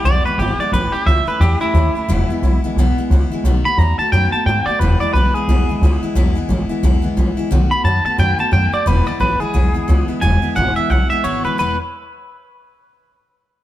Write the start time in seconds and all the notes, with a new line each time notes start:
0.04 B1 E2 B2 E3 G#3 B3 E4 D5
0.25 E3 G#3 B3 E4 B4, muted upright bass stroke
0.38 G#1 E3 G#3 B3 G4
0.42 E4
0.58 B3 E4 D5, muted upright bass stroke
0.62 E3 G#3
0.72 A1 A2 E3 A3 C#4 E4 B4
0.92 A3 C#4 E4 G4, muted upright bass stroke
1.06 C#2 E3 A3 C#4 E4 E5
1.26 A3 C#4 E4 B4, muted upright bass stroke
1.40 E2 A2 E3 A3 C#4 E4 G4
1.60 A3 C#4 E4, muted upright bass stroke
1.74 D#2 E3 A3 C#4 E4
1.94 A3 C#4 E4, muted upright bass stroke
2.08 E1 E2 B2 E3 G#3 B3 E4
2.29 E3 G#3 B3 E4, muted upright bass stroke
2.42 B1 E3 G#3 B3 E4
2.63 E3 G#3 B3 E4, muted upright bass stroke
2.76 B1 E2 B2 E3 G#3 B3
2.80 E4
2.96 E3 G#3 B3 E4, muted upright bass stroke
3.10 C#2 E3 G#3 B3 E4
3.30 E3 G#3 B3 E4, muted upright bass stroke
3.44 B1 B2 D#3 A3 B3 F#4
3.64 A3 B3 F#4 B5, muted upright bass stroke
3.77 E2 D#3 A3 B3 F#4 A#5
3.98 A3 B3 F#4 A5, muted upright bass stroke
4.12 F#2 B2 D#3 A3 B3 F#4 G5
4.32 A3 B3 F#4 A5, muted upright bass stroke
4.46 G#2 D#3 A3 B3 F#4 G5
4.66 B3 F#4 D5, muted upright bass stroke
4.70 A3
4.79 E1 E2 B2 E3 G#3 B3 E4 B4
5.00 E3 G#3 B3 E4 D5, muted upright bass stroke
5.13 B1 E3 G#3 B3 B4
5.18 E4
5.33 E3 G#3 B3 E4 G#4, muted upright bass stroke
5.48 B1 E2 B2 E3 G#3 B3 E4
5.68 E3 G#3 B3 E4, muted upright bass stroke
5.81 C#2 E3 G#3 B3 E4
6.02 E3 G#3 B3 E4, muted upright bass stroke
6.15 B1 E2 B2 E3 G#3 B3 E4
6.35 E3 G#3 B3 E4, muted upright bass stroke
6.49 A1 E3 G#3 B3 E4
6.69 E3 G#3 B3 E4, muted upright bass stroke
6.83 B1 E2 B2 E3 G#3 B3 E4
7.02 E3 G#3 B3 E4, muted upright bass stroke
7.17 A#1 E3 G#3 B3 E4
7.37 E3 G#3 B3 E4, muted upright bass stroke
7.51 B1 B2 D#3 A3 B3 F#4
7.71 A3 B3 F#4 B5, muted upright bass stroke
7.84 F#2 D#3 A3 B3 F#4 A5
8.05 A3 B3 F#4 A5, muted upright bass stroke
8.18 F#2 B2 D#3 A3 B3 F#4 G5
8.38 A3 B3 F#4 A5, muted upright bass stroke
8.51 F#2 D#3 A3 B3 F#4 G5
8.72 A3 B3 F#4 D5, muted upright bass stroke
8.86 E1 E2 B2 E3 G#3 B3 E4 B4
9.06 E3 G#3 B3 E4 D5, muted upright bass stroke
9.20 A1 E3 G#3 B3 E4 B4
9.40 E3 G#3 B3 E4 G#4, muted upright bass stroke
9.54 B1 E2 B2 E3 G#3 B3 E4
9.74 E3 G#3 B3 E4, muted upright bass stroke
9.88 C#2 E3 G#3 B3 E4
10.08 E3 G#3 B3 E4, muted upright bass stroke
10.21 E1 E2 B2 E3 G#3 B3 E4 G#5
10.42 E3 G#3 B3 E4, muted upright bass stroke
10.56 G#1 E2 B2 E3 G#3 B3 E4 F#5
10.76 E3 G#3 B3 E4 E5, muted upright bass stroke
10.90 B1 E3 G#3 B3 E4 F#5
11.10 E3 G#3 B3 E4 E5, muted upright bass stroke
11.24 G#1 E2 B2 E3 G#3 B3 E4 C#5
11.44 B1 E3 G#3 B3 E4 B4
11.58 E1 E2 B2 E3 G#3 B3 E4 B4